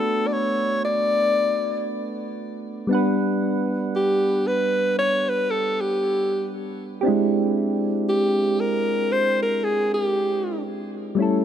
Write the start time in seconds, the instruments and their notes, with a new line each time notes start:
Already playing: synth keys A3 B3 D4 F#4 B4, alto saxophone A4
0.27 alto saxophone D5
0.33 alto saxophone C#5
0.85 alto saxophone D5
2.87 synth keys G3 B3 D4
2.93 synth keys B4 F#5
3.96 alto saxophone G4
4.47 alto saxophone B4
4.99 alto saxophone C#5
5.29 alto saxophone B4
5.51 alto saxophone A4
5.81 alto saxophone G4
7.01 synth keys C4 D4 G4
7.06 synth keys G#3 E4
8.09 alto saxophone G4
8.61 alto saxophone A#4
9.12 alto saxophone C5
9.42 alto saxophone A#4
9.64 alto saxophone G#4
9.94 alto saxophone G4
11.15 synth keys G3 A3 C#4
11.20 synth keys E4 A4